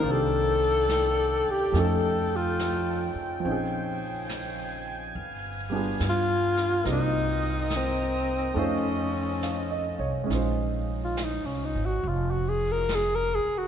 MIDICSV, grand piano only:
0, 0, Header, 1, 2, 480
1, 0, Start_track
1, 0, Key_signature, -5, "minor"
1, 0, Tempo, 849858
1, 27, Time_signature, 4, 2, 24, 8
1, 4347, Tempo, 863309
1, 7672, End_track
2, 0, Start_track
2, 0, Title_t, "Grand piano"
2, 0, Program_c, 0, 0
2, 0, Control_c, 0, 64, 127
2, 0, Note_on_c, 0, 51, 44
2, 16, Note_on_c, 0, 58, 39
2, 33, Control_c, 0, 64, 0
2, 33, Note_on_c, 0, 60, 39
2, 50, Note_on_c, 0, 62, 40
2, 65, Note_on_c, 0, 67, 47
2, 140, Control_c, 0, 64, 127
2, 970, Note_off_c, 0, 51, 0
2, 972, Note_on_c, 0, 53, 48
2, 978, Note_off_c, 0, 58, 0
2, 979, Note_on_c, 0, 57, 49
2, 987, Note_off_c, 0, 60, 0
2, 991, Note_on_c, 0, 61, 49
2, 992, Control_c, 0, 64, 0
2, 992, Note_on_c, 0, 63, 45
2, 995, Note_off_c, 0, 62, 0
2, 1002, Note_on_c, 0, 69, 58
2, 1003, Note_off_c, 0, 67, 0
2, 1092, Control_c, 0, 64, 127
2, 1911, Note_off_c, 0, 53, 0
2, 1919, Note_on_c, 0, 53, 48
2, 1940, Note_on_c, 0, 60, 42
2, 1941, Note_off_c, 0, 57, 0
2, 1943, Note_off_c, 0, 61, 0
2, 1947, Note_off_c, 0, 63, 0
2, 1949, Control_c, 0, 64, 0
2, 1951, Note_on_c, 0, 61, 43
2, 1952, Note_off_c, 0, 69, 0
2, 1964, Note_on_c, 0, 63, 42
2, 1983, Note_on_c, 0, 68, 50
2, 2045, Control_c, 0, 64, 127
2, 2894, Note_off_c, 0, 53, 0
2, 2904, Note_off_c, 0, 60, 0
2, 2909, Note_off_c, 0, 61, 0
2, 2912, Control_c, 0, 64, 0
2, 2916, Note_off_c, 0, 63, 0
2, 2925, Note_off_c, 0, 68, 0
2, 3009, Control_c, 0, 64, 127
2, 3217, Note_on_c, 0, 55, 44
2, 3227, Note_on_c, 0, 59, 42
2, 3232, Note_on_c, 0, 62, 41
2, 3238, Note_on_c, 0, 65, 43
2, 3244, Note_on_c, 0, 68, 48
2, 3864, Note_off_c, 0, 55, 0
2, 3864, Note_on_c, 0, 58, 43
2, 3869, Note_off_c, 0, 59, 0
2, 3871, Note_off_c, 0, 62, 0
2, 3871, Note_on_c, 0, 60, 40
2, 3872, Control_c, 0, 64, 0
2, 3874, Note_off_c, 0, 65, 0
2, 3876, Note_on_c, 0, 63, 39
2, 3877, Note_off_c, 0, 68, 0
2, 3882, Note_on_c, 0, 66, 41
2, 3896, Note_on_c, 0, 70, 50
2, 3963, Control_c, 0, 64, 127
2, 4815, Note_on_c, 0, 57, 51
2, 4823, Note_off_c, 0, 63, 0
2, 4826, Note_off_c, 0, 58, 0
2, 4827, Note_on_c, 0, 61, 48
2, 4829, Note_off_c, 0, 60, 0
2, 4831, Note_on_c, 0, 63, 50
2, 4834, Control_c, 0, 64, 0
2, 4835, Note_off_c, 0, 66, 0
2, 4841, Note_off_c, 0, 70, 0
2, 4841, Note_on_c, 0, 65, 49
2, 4843, Note_on_c, 0, 72, 57
2, 4920, Control_c, 0, 64, 127
2, 5312, Note_on_c, 0, 77, 42
2, 5464, Note_on_c, 0, 75, 41
2, 5609, Note_off_c, 0, 77, 0
2, 5625, Note_on_c, 0, 73, 47
2, 5717, Note_off_c, 0, 75, 0
2, 5760, Note_on_c, 0, 56, 46
2, 5765, Note_off_c, 0, 61, 0
2, 5773, Note_on_c, 0, 61, 39
2, 5783, Note_off_c, 0, 63, 0
2, 5789, Note_off_c, 0, 57, 0
2, 5791, Note_on_c, 0, 63, 41
2, 5797, Note_off_c, 0, 65, 0
2, 5803, Note_off_c, 0, 72, 0
2, 5803, Control_c, 0, 64, 0
2, 5806, Note_on_c, 0, 65, 40
2, 5820, Note_on_c, 0, 72, 50
2, 5877, Note_off_c, 0, 73, 0
2, 5897, Control_c, 0, 64, 127
2, 7672, Note_off_c, 0, 56, 0
2, 7672, Note_off_c, 0, 61, 0
2, 7672, Note_off_c, 0, 63, 0
2, 7672, Note_off_c, 0, 65, 0
2, 7672, Note_off_c, 0, 72, 0
2, 7672, End_track
0, 0, End_of_file